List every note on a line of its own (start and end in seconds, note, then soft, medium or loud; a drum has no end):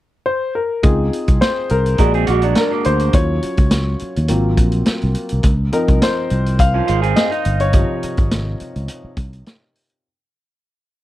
0.26 0.53 C5 medium
0.55 0.85 A#4 medium
0.83 1.09 C#2 medium
0.83 1.66 C4 soft
0.83 1.66 D#4 soft
0.83 1.66 F4 medium
0.83 1.43 G#4 medium
0.83 kick loud
0.83 closed hi-hat medium
1.13 closed hi-hat medium
1.28 1.40 C2 medium
1.28 kick medium
1.28 closed hi-hat soft
1.41 1.71 C5 medium
1.41 snare medium
1.41 closed hi-hat medium
1.69 1.96 C2 medium
1.69 2.00 A#4 medium
1.69 closed hi-hat medium
1.86 closed hi-hat soft
1.98 2.24 A#1 medium
1.98 2.38 G#3 medium
1.98 2.14 D4 medium
1.98 2.38 D4 soft
1.98 2.28 F#4 medium
1.98 2.29 G#4 medium
1.98 2.14 A#4 medium
1.98 kick medium
1.98 closed hi-hat medium
2.14 2.27 C4 medium
2.14 2.27 G#4 medium
2.14 closed hi-hat soft
2.27 2.53 A#1 medium
2.27 2.42 A#3 medium
2.27 2.42 F#4 medium
2.27 2.59 F#4 medium
2.27 closed hi-hat medium
2.42 2.70 F#3 medium
2.42 2.70 D4 medium
2.42 closed hi-hat soft
2.55 2.87 A#4 medium
2.55 snare medium
2.55 closed hi-hat medium
2.71 3.12 D3 soft
2.71 3.12 A#3 medium
2.84 3.11 D2 medium
2.84 3.15 C5 medium
2.84 closed hi-hat medium
2.99 closed hi-hat soft
3.13 3.39 D#2 medium
3.13 3.53 F#3 soft
3.13 3.54 C#4 soft
3.13 3.54 F4 soft
3.13 3.97 C#5 medium
3.13 kick medium
3.13 closed hi-hat medium
3.43 muted fingered electric bass stroke soft
3.43 closed hi-hat medium
3.57 3.94 C#2 medium
3.57 kick medium
3.57 closed hi-hat soft
3.71 snare medium
3.71 closed hi-hat medium
3.99 muted fingered electric bass stroke soft
3.99 closed hi-hat medium
4.16 4.28 D#2 medium
4.16 closed hi-hat soft
4.28 4.54 G#1 medium
4.28 5.40 F#3 soft
4.28 5.40 A#3 soft
4.28 5.40 C4 soft
4.28 5.40 F4 medium
4.28 closed hi-hat medium
4.57 4.82 A#1 medium
4.57 kick medium
4.57 closed hi-hat medium
4.72 closed hi-hat soft
4.86 snare medium
4.86 closed hi-hat medium
5.02 5.14 C2 medium
5.02 closed hi-hat soft
5.15 closed hi-hat medium
5.29 5.43 C2 medium
5.29 closed hi-hat soft
5.43 5.69 C#2 loud
5.43 kick loud
5.43 closed hi-hat medium
5.72 6.55 F3 medium
5.72 6.55 C4 soft
5.72 6.55 D#4 medium
5.72 6.03 A#4 medium
5.72 closed hi-hat medium
5.88 6.00 C2 medium
5.88 kick medium
5.88 closed hi-hat soft
6.02 6.61 C5 medium
6.02 snare loud
6.02 closed hi-hat loud
6.30 6.80 C2 medium
6.30 closed hi-hat medium
6.46 closed hi-hat soft
6.59 7.18 F5 loud
6.59 kick medium
6.59 closed hi-hat medium
6.74 6.87 F3 medium
6.74 6.87 C#4 medium
6.87 7.13 G#1 medium
6.87 7.03 G#3 medium
6.87 7.02 F4 medium
6.87 closed hi-hat medium
7.02 7.30 C4 medium
7.02 7.30 G#4 medium
7.02 closed hi-hat soft
7.16 7.62 D#5 medium
7.16 snare medium
7.16 closed hi-hat medium
7.31 8.14 D#4 medium
7.31 closed hi-hat soft
7.45 7.83 G1 medium
7.45 closed hi-hat medium
7.60 9.29 C#5 medium
7.60 closed hi-hat soft
7.73 8.14 C3 soft
7.73 8.13 F3 soft
7.73 8.14 D#4 medium
7.73 kick loud
7.73 closed hi-hat medium
8.03 muted fingered electric bass stroke soft
8.03 closed hi-hat medium
8.17 8.54 G#1 medium
8.17 kick medium
8.17 closed hi-hat soft
8.31 snare loud
8.31 closed hi-hat medium
8.60 muted fingered electric bass stroke soft
8.60 closed hi-hat medium
8.76 8.87 C#2 medium
8.76 closed hi-hat soft
8.88 closed hi-hat medium
9.04 muted fingered electric bass stroke soft
9.17 9.42 C2 medium
9.17 kick medium
9.17 closed hi-hat medium
9.33 closed hi-hat soft
9.46 snare medium
9.46 closed hi-hat medium
9.75 open hi-hat medium
9.90 closed hi-hat soft